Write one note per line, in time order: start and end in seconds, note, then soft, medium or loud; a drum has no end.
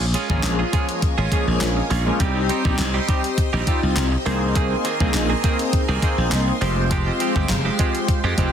0.00 0.14 A#1 loud
0.00 2.18 F4 medium
0.00 2.18 A#4 medium
0.00 2.18 C#5 medium
0.00 2.18 G#5 medium
0.14 0.30 G#3 medium
0.14 0.29 C#4 medium
0.14 0.29 F4 medium
0.14 0.28 G#4 medium
0.14 closed hi-hat medium
0.29 0.39 G#1 medium
0.29 0.60 F3 loud
0.29 0.60 G#3 loud
0.29 0.42 G#3 medium
0.29 0.60 A#3 medium
0.29 0.60 C#4 medium
0.29 0.43 C#4 medium
0.29 0.43 F4 medium
0.29 0.43 G#4 medium
0.29 0.60 G#4 loud
0.29 kick loud
0.43 0.63 A#1 loud
0.43 muted clean electric guitar stroke soft
0.43 snare loud
0.43 clap loud
0.43 closed hi-hat medium
0.59 0.71 G#3 medium
0.59 0.72 C#4 medium
0.59 0.72 F4 medium
0.59 0.73 G#4 medium
0.73 1.14 F3 medium
0.73 0.93 G#3 medium
0.73 1.14 G#3 medium
0.73 1.14 A#3 medium
0.73 1.14 C#4 medium
0.73 0.88 C#4 medium
0.73 0.88 F4 medium
0.73 1.14 G#4 medium
0.73 0.87 G#4 loud
0.73 kick loud
0.73 closed hi-hat medium
0.89 muted clean electric guitar stroke medium
0.89 closed hi-hat medium
1.02 muted clean electric guitar stroke soft
1.02 kick loud
1.02 closed hi-hat medium
1.18 1.27 G#1 medium
1.18 1.30 G#3 medium
1.18 1.31 C#4 medium
1.18 1.31 F4 medium
1.18 1.32 G#4 medium
1.31 1.83 F3 medium
1.31 1.48 G#3 medium
1.31 1.83 G#3 medium
1.31 1.83 A#3 medium
1.31 1.83 C#4 medium
1.31 1.47 C#4 medium
1.31 1.47 F4 medium
1.31 1.83 G#4 loud
1.31 1.46 G#4 medium
1.31 kick medium
1.31 closed hi-hat medium
1.47 1.56 A#1 medium
1.47 muted clean electric guitar stroke soft
1.61 1.80 A#1 loud
1.61 muted clean electric guitar stroke medium
1.61 snare loud
1.61 clap loud
1.61 closed hi-hat loud
1.77 muted clean electric guitar stroke soft
1.90 2.10 A#1 loud
1.90 2.10 G#3 medium
1.90 2.06 C#4 medium
1.90 2.05 F4 loud
1.90 2.05 G#4 medium
1.90 open hi-hat medium
2.06 2.20 F3 loud
2.06 2.20 G#3 medium
2.06 2.20 A#3 medium
2.06 2.20 C#4 medium
2.06 2.20 F4 loud
2.06 muted clean electric guitar stroke medium
2.20 2.49 C2 loud
2.20 2.40 G3 loud
2.20 2.40 C4 loud
2.20 2.40 D#4 loud
2.20 4.24 G4 medium
2.20 2.40 G4 loud
2.20 4.24 C5 medium
2.20 4.24 D#5 medium
2.20 4.24 C6 medium
2.20 kick loud
2.20 closed hi-hat medium
2.35 2.86 C4 medium
2.35 2.86 D#4 medium
2.35 2.86 G4 loud
2.49 2.65 G3 medium
2.49 2.64 C4 medium
2.49 2.64 D#4 medium
2.49 2.63 G4 medium
2.49 closed hi-hat medium
2.65 2.74 A#1 loud
2.65 2.77 G3 medium
2.65 2.78 C4 medium
2.65 2.78 D#4 medium
2.65 2.79 G4 medium
2.65 kick medium
2.79 2.98 C2 loud
2.79 muted clean electric guitar stroke soft
2.79 snare loud
2.79 clap loud
2.79 closed hi-hat medium
2.94 3.07 G3 medium
2.94 3.07 C4 medium
2.94 3.08 D#4 medium
2.94 3.08 G4 medium
3.08 3.28 G3 medium
3.08 3.49 C4 medium
3.08 3.23 C4 medium
3.08 3.49 D#4 medium
3.08 3.23 D#4 medium
3.08 3.49 G4 loud
3.08 3.22 G4 loud
3.08 kick loud
3.08 closed hi-hat medium
3.24 muted clean electric guitar stroke soft
3.24 closed hi-hat soft
3.38 muted clean electric guitar stroke soft
3.38 kick loud
3.38 closed hi-hat medium
3.53 3.62 A#1 medium
3.53 3.66 G3 medium
3.53 3.66 C4 medium
3.53 3.66 D#4 medium
3.53 3.67 G4 medium
3.67 3.83 G3 medium
3.67 4.08 C4 medium
3.67 3.82 C4 medium
3.67 4.08 D#4 medium
3.67 3.82 D#4 medium
3.67 4.08 F4 loud
3.67 3.81 G4 medium
3.67 kick medium
3.67 closed hi-hat medium
3.83 3.92 C2 medium
3.83 muted clean electric guitar stroke soft
3.96 4.15 C2 loud
3.96 snare loud
3.96 clap loud
3.96 closed hi-hat loud
4.12 muted clean electric guitar stroke medium
4.25 4.74 C2 loud
4.25 4.46 D#3 medium
4.25 4.85 A#3 medium
4.25 4.41 A#3 loud
4.25 4.85 C4 medium
4.25 4.41 C4 medium
4.25 4.85 D#4 medium
4.25 4.85 G#4 medium
4.25 4.40 G#4 loud
4.25 6.59 A#4 medium
4.25 4.85 C5 loud
4.25 6.59 D#5 medium
4.25 6.59 G#5 medium
4.25 8.52 C6 medium
4.25 open hi-hat medium
4.42 muted clean electric guitar stroke soft
4.55 4.75 D#3 medium
4.55 4.75 A#3 loud
4.55 4.76 C4 loud
4.55 4.76 G#4 loud
4.55 kick loud
4.55 closed hi-hat medium
4.84 5.00 D#3 medium
4.84 5.00 A#3 medium
4.84 4.99 C4 medium
4.84 4.99 G#4 medium
4.84 closed hi-hat medium
5.00 5.09 C2 medium
5.00 5.13 D#3 medium
5.00 5.30 A#3 loud
5.00 5.13 A#3 medium
5.00 5.30 C4 loud
5.00 5.14 C4 medium
5.00 5.31 D#4 medium
5.00 5.14 G#4 medium
5.00 5.31 G#4 loud
5.00 5.31 D#5 loud
5.00 kick loud
5.14 5.33 A#1 loud
5.14 snare medium
5.14 clap loud
5.14 closed hi-hat medium
5.30 5.42 D#3 medium
5.30 5.43 A#3 medium
5.30 5.43 C4 medium
5.30 5.43 G#4 medium
5.43 5.63 D#3 medium
5.43 5.84 A#3 medium
5.43 5.59 A#3 medium
5.43 5.84 C4 medium
5.43 5.58 C4 medium
5.43 5.85 D#4 medium
5.43 5.85 G#4 medium
5.43 5.58 G#4 loud
5.43 5.85 C5 loud
5.43 kick loud
5.43 closed hi-hat medium
5.59 muted clean electric guitar stroke medium
5.59 closed hi-hat medium
5.73 muted clean electric guitar stroke soft
5.73 kick loud
5.73 closed hi-hat medium
5.89 5.98 C2 loud
5.89 6.01 D#3 medium
5.89 6.02 A#3 medium
5.89 6.02 C4 medium
5.89 6.03 G#4 medium
6.02 6.18 D#3 medium
6.02 6.53 A#3 medium
6.02 6.18 A#3 medium
6.02 6.53 C4 medium
6.02 6.18 C4 medium
6.02 6.53 D#4 medium
6.02 6.53 G#4 medium
6.02 6.17 G#4 medium
6.02 6.53 C5 loud
6.02 kick medium
6.02 closed hi-hat medium
6.18 6.27 A#1 medium
6.32 6.51 C2 loud
6.32 muted clean electric guitar stroke soft
6.32 snare medium
6.32 clap loud
6.32 closed hi-hat loud
6.48 muted clean electric guitar stroke soft
6.61 7.09 F1 loud
6.61 6.81 F3 medium
6.61 6.97 G#3 loud
6.61 8.52 G#3 medium
6.61 6.77 G#3 medium
6.61 6.97 C4 medium
6.61 6.76 C4 medium
6.61 6.97 F4 medium
6.61 6.97 G4 medium
6.61 6.76 G4 loud
6.61 6.97 C5 loud
6.61 8.52 F5 medium
6.61 8.52 G5 medium
6.61 open hi-hat medium
6.77 muted clean electric guitar stroke soft
6.91 7.10 F3 medium
6.91 7.11 G#3 loud
6.91 7.11 C4 loud
6.91 7.11 G4 loud
6.91 kick loud
6.91 closed hi-hat medium
7.06 7.56 G#3 medium
7.06 7.56 C4 medium
7.06 7.56 F4 medium
7.06 7.56 G4 medium
7.06 7.56 C5 loud
7.20 7.36 F3 medium
7.20 7.35 G#3 medium
7.20 7.35 C4 medium
7.20 7.34 G4 medium
7.20 closed hi-hat medium
7.36 7.45 G1 medium
7.36 7.48 F3 medium
7.36 7.49 G#3 medium
7.36 7.49 C4 medium
7.36 7.49 G4 medium
7.36 kick loud
7.49 7.69 F1 medium
7.49 muted clean electric guitar stroke soft
7.49 snare loud
7.49 clap loud
7.49 closed hi-hat medium
7.65 7.78 F3 medium
7.65 7.78 G#3 medium
7.65 7.79 C4 medium
7.65 7.79 G4 medium
7.79 7.99 F3 medium
7.79 8.20 G#3 medium
7.79 7.94 G#3 medium
7.79 8.20 C4 medium
7.79 7.94 C4 medium
7.79 8.20 F4 medium
7.79 8.20 G4 medium
7.79 7.93 G4 medium
7.79 8.20 C5 loud
7.79 kick loud
7.79 closed hi-hat medium
7.95 muted clean electric guitar stroke medium
7.95 closed hi-hat medium
8.08 muted clean electric guitar stroke soft
8.08 kick loud
8.08 closed hi-hat medium
8.24 8.33 F2 medium
8.24 8.36 F3 medium
8.24 8.37 G#3 medium
8.24 8.37 C4 medium
8.24 8.38 G4 medium
8.37 8.48 F1 medium
8.37 8.52 F3 medium
8.37 8.52 G#3 medium
8.37 8.52 C4 medium
8.37 8.52 F4 medium
8.37 8.52 G4 medium
8.37 8.52 C5 loud
8.37 kick medium
8.37 closed hi-hat medium